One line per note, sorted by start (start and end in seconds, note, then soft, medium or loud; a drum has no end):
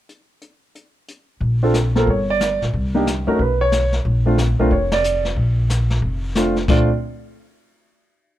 0.09 closed hi-hat soft
0.41 closed hi-hat soft
0.75 closed hi-hat medium
1.08 closed hi-hat soft
1.40 2.04 A#1 medium
1.40 brush sweep soft
1.40 kick soft
1.63 1.74 C4 medium
1.63 1.74 D4 medium
1.63 1.74 F4 medium
1.63 1.74 A4 medium
1.74 snare medium
1.74 hi-hat pedal medium
1.95 2.06 A#3 medium
1.95 2.07 C4 medium
1.95 2.07 F4 medium
1.95 2.07 A4 medium
1.95 2.09 A#4 medium
1.95 snare soft
2.07 2.57 G1 medium
2.07 2.29 C#5 medium
2.07 brush sweep soft
2.07 kick soft
2.30 2.60 D5 medium
2.40 snare medium
2.40 hi-hat pedal soft
2.61 2.73 A#1 medium
2.61 snare soft
2.73 3.24 C2 medium
2.73 brush sweep soft
2.73 kick soft
2.95 3.06 A#3 medium
2.95 3.06 D4 medium
2.95 3.06 D#4 medium
2.95 3.06 G4 medium
3.07 snare medium
3.07 hi-hat pedal medium
3.27 3.38 F#2 medium
3.27 3.38 A3 medium
3.27 3.38 C#4 medium
3.27 3.39 D#4 medium
3.27 3.39 F#4 medium
3.27 3.39 A#4 medium
3.39 4.02 B1 medium
3.39 3.61 B4 medium
3.39 brush sweep soft
3.39 kick soft
3.61 3.91 C#5 medium
3.72 snare medium
3.72 hi-hat pedal medium
3.92 snare soft
4.05 4.55 A#1 medium
4.05 brush sweep soft
4.05 kick soft
4.26 4.37 A3 medium
4.26 4.37 C4 soft
4.26 4.37 D4 medium
4.26 4.37 F4 medium
4.38 snare medium
4.38 hi-hat pedal medium
4.59 4.70 B1 medium
4.59 4.70 A3 medium
4.59 4.70 C4 medium
4.59 4.71 D4 medium
4.59 4.71 F4 medium
4.59 4.71 A#4 medium
4.71 5.33 F1 medium
4.71 4.92 C#5 medium
4.71 brush sweep soft
4.71 kick soft
4.92 5.23 D5 medium
4.92 snare medium
4.92 ride medium
5.04 hi-hat pedal medium
5.25 snare soft
5.36 5.99 A#1 medium
5.36 brush sweep soft
5.36 kick soft
5.70 snare medium
5.70 hi-hat pedal medium
5.90 snare soft
6.02 6.65 F1 medium
6.02 brush sweep soft
6.02 kick soft
6.35 6.54 A3 medium
6.35 6.55 C4 medium
6.35 6.55 D4 medium
6.35 6.55 F4 medium
6.35 snare medium
6.35 hi-hat pedal medium
6.56 snare soft
6.68 6.88 A#1 medium
6.68 6.87 A3 medium
6.68 6.88 C4 medium
6.68 6.88 D4 medium
6.68 6.88 F4 medium
6.68 6.89 D5 medium
6.68 kick medium
6.68 snare medium
6.68 crash medium